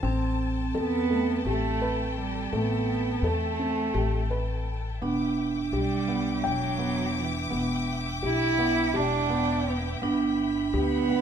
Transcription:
Already playing: vibraphone A3, string section A5
0.03 upright bass A1, felt piano C4, vibraphone C4, string section A4 G5
0.74 upright bass E2, cello B3, felt piano A4
1.10 felt piano A3
1.45 upright bass A1, cello A3, felt piano G4
1.82 felt piano B4
2.20 cello G3
2.52 upright bass A1, felt piano A3, cello B3
3.22 upright bass E2, felt piano A4
3.27 cello A3
3.59 felt piano C4
3.94 upright bass A1, felt piano G4
4.31 felt piano B4
5.01 upright bass E1, felt piano B3, vibraphone D4, string section E5 G5 D6
5.72 upright bass B1, cello G3, felt piano G4
6.08 felt piano B3
6.38 cello G3
6.44 upright bass E1, felt piano G5
6.49 cello F#3
6.79 felt piano B3
7.19 cello E3
7.50 upright bass E1, felt piano B3
8.23 upright bass B1, cello E4, felt piano G4
8.59 felt piano B3
8.94 upright bass E1, cello D4, felt piano G4
9.30 felt piano B3
9.67 cello B3
10.02 upright bass G1, felt piano B3, vibraphone D4, string section B5
10.74 upright bass D2, cello B3, felt piano G4
11.09 felt piano B3

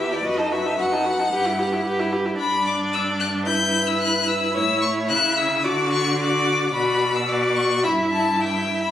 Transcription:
Already playing: cello E2, violin E5
0.00 viola G4, violin B4
0.12 viola E4, violin G4 D5
0.25 cello F#2, viola F#4, violin B4 D#5
0.38 viola D#4, violin A4
0.52 viola F#4, violin B4 E5
0.65 viola D#4, violin A4
0.78 cello F#2, viola F#4, violin B4 F#5
0.92 viola D#4, violin A4
1.06 viola F#4, violin B4
1.19 viola D#4, violin A4
1.32 cello G2, viola G4, violin B4
1.46 viola E4, violin G4
1.59 viola G4, violin B4
1.72 viola E4, violin G4
1.86 cello G2, viola G4, violin B4
2.00 viola E4, violin G4
2.13 viola G4, violin B4
2.26 viola E4, violin G4
2.39 cello G2, viola D4, violin D5 B5
2.67 violin D6
2.93 violin E6
3.20 violin F#6
3.47 viola E4, violin B4 G6
3.87 violin E6
4.01 violin F#6
4.28 violin E6
4.54 cello A2, viola E4, violin C#5 E6
4.82 violin C#6
5.09 cello C#3, violin E5 F#6
5.37 violin E6
5.64 cello D3, viola F#4, violin D5 D6
5.93 violin C#6
6.19 viola F#4, violin D5 D6
6.74 cello B2, viola F#4, violin D5 B5
7.15 violin E6
7.28 viola F#4, violin D5 D6
7.56 violin C#6
7.84 cello G2, viola E4, violin E5 B5
8.11 violin A5
8.40 viola E4, violin E5 G5
8.83 violin B5

